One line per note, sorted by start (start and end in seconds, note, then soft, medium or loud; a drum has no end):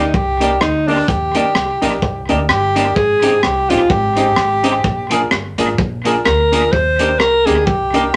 0.00 0.11 D2 medium
0.00 0.17 D#4 medium
0.14 0.54 C2 medium
0.14 0.63 G4 loud
0.14 kick loud
0.40 0.50 A#3 medium
0.40 0.50 D4 medium
0.40 0.54 D#4 medium
0.40 0.54 G4 medium
0.40 0.50 G4 medium
0.40 0.54 A#4 medium
0.40 0.54 D5 loud
0.40 closed hi-hat medium
0.61 1.01 D2 medium
0.61 0.89 D#4 loud
0.61 cross-stick loud
0.88 0.97 A#3 medium
0.88 1.08 D4 medium
0.88 0.98 D4 medium
0.88 1.01 D#4 medium
0.88 1.01 G4 medium
0.88 0.98 G4 medium
0.88 1.01 A#4 medium
0.88 1.01 D5 medium
0.88 open hi-hat medium
1.08 1.48 D#2 medium
1.08 2.25 G4 loud
1.08 kick loud
1.08 hi-hat pedal medium
1.35 1.44 A#3 medium
1.35 1.44 D4 medium
1.35 1.48 D#4 medium
1.35 1.48 G4 medium
1.35 1.45 G4 medium
1.35 1.49 A#4 medium
1.35 1.49 D5 loud
1.35 closed hi-hat medium
1.55 1.78 C2 medium
1.55 1.61 A#4 soft
1.55 1.61 D5 soft
1.55 cross-stick loud
1.82 1.99 A#1 medium
1.82 1.91 A#3 medium
1.82 1.92 D4 medium
1.82 1.95 D#4 medium
1.82 1.95 G4 medium
1.82 1.92 G4 medium
1.82 1.95 A#4 medium
1.82 1.95 D5 medium
1.82 closed hi-hat medium
2.02 2.25 C2 loud
2.02 kick loud
2.29 2.46 D2 medium
2.29 2.38 A#3 medium
2.29 2.39 D4 medium
2.29 2.42 D#4 medium
2.29 2.42 G4 medium
2.29 2.39 G4 medium
2.29 2.42 A#4 medium
2.29 2.43 D5 medium
2.29 closed hi-hat medium
2.49 2.89 G1 loud
2.49 2.97 G4 loud
2.49 cross-stick loud
2.75 2.85 A#3 medium
2.75 2.85 D4 medium
2.75 2.89 D#4 medium
2.75 2.89 G4 medium
2.75 2.86 G4 medium
2.75 2.89 A#4 medium
2.75 2.90 D5 loud
2.75 closed hi-hat loud
2.96 3.36 G#1 loud
2.96 3.45 G#4 loud
2.96 kick loud
3.22 3.32 C4 medium
3.22 3.36 D#4 medium
3.22 3.32 D#4 medium
3.22 3.36 G4 medium
3.22 3.33 G4 medium
3.22 3.36 G#4 medium
3.22 3.37 C5 loud
3.22 closed hi-hat loud
3.43 3.66 C2 loud
3.43 3.71 G4 loud
3.43 3.49 G#4 soft
3.43 3.49 C5 soft
3.43 cross-stick loud
3.70 3.88 A#1 medium
3.70 3.79 C4 medium
3.70 3.83 D#4 medium
3.70 3.80 D#4 medium
3.70 3.92 F4 loud
3.70 3.83 G4 medium
3.70 3.80 G4 loud
3.70 3.84 G#4 medium
3.70 3.84 C5 loud
3.70 closed hi-hat medium
3.90 4.30 G#1 loud
3.90 5.11 G4 loud
3.90 3.96 G#4 soft
3.90 3.96 C5 soft
3.90 kick loud
4.16 4.26 C4 medium
4.16 4.30 D#4 medium
4.16 4.26 D#4 medium
4.16 4.30 G4 medium
4.16 4.27 G4 medium
4.16 4.30 G#4 medium
4.16 4.31 C5 medium
4.16 closed hi-hat medium
4.36 4.78 G#1 loud
4.36 cross-stick loud
4.63 4.73 C4 medium
4.63 4.77 D#4 medium
4.63 4.74 D#4 medium
4.63 4.77 G4 medium
4.63 4.74 G4 medium
4.63 4.78 G#4 medium
4.63 4.78 C5 loud
4.63 closed hi-hat loud
4.84 5.24 A#1 medium
4.84 kick loud
5.10 5.20 A#3 medium
5.10 5.24 D4 medium
5.10 5.20 D4 medium
5.10 5.24 F4 medium
5.10 5.24 G#4 medium
5.10 5.21 G#4 loud
5.10 5.25 A#4 loud
5.10 closed hi-hat loud
5.31 5.55 G1 medium
5.31 cross-stick loud
5.58 5.76 G#1 medium
5.58 5.67 A#3 medium
5.58 5.71 D4 medium
5.58 5.68 D4 medium
5.58 5.72 F4 medium
5.58 5.72 G#4 medium
5.58 5.68 G#4 medium
5.58 5.72 A#4 loud
5.58 closed hi-hat loud
5.78 6.18 A#1 loud
5.78 kick loud
6.05 6.14 A#3 medium
6.05 6.18 D4 medium
6.05 6.15 D4 medium
6.05 6.19 F4 medium
6.05 6.19 G#4 medium
6.05 6.15 G#4 medium
6.05 6.19 A#4 loud
6.05 closed hi-hat medium
6.25 6.66 D2 medium
6.25 6.74 A#4 loud
6.25 cross-stick loud
6.52 6.62 A#3 medium
6.52 6.65 D4 medium
6.52 6.62 D4 medium
6.52 6.66 F4 medium
6.52 6.66 G#4 medium
6.52 6.62 G#4 medium
6.52 6.66 A#4 medium
6.52 closed hi-hat loud
6.72 7.20 D#2 medium
6.72 7.21 C5 loud
6.72 kick loud
6.99 7.09 A#3 medium
6.99 7.13 D4 medium
6.99 7.09 D4 medium
6.99 7.13 D#4 medium
6.99 7.13 G4 medium
6.99 7.09 G4 medium
6.99 7.13 A#4 medium
6.99 closed hi-hat loud
7.19 7.43 C2 medium
7.19 7.25 G4 soft
7.19 7.47 A#4 loud
7.19 cross-stick loud
7.46 7.64 D2 loud
7.46 7.55 A#3 medium
7.46 7.59 D4 medium
7.46 7.56 D4 medium
7.46 7.60 D#4 medium
7.46 7.60 G4 medium
7.46 7.56 G4 medium
7.46 7.67 G#4 loud
7.46 7.60 A#4 medium
7.46 closed hi-hat loud
7.66 8.07 C2 medium
7.66 8.16 G4 medium
7.66 7.73 G4 soft
7.66 7.73 A#4 soft
7.66 kick loud
7.93 8.03 A#3 medium
7.93 8.07 D4 medium
7.93 8.03 D4 medium
7.93 8.07 D#4 medium
7.93 8.07 G4 medium
7.93 8.04 G4 medium
7.93 8.07 A#4 loud
7.93 closed hi-hat medium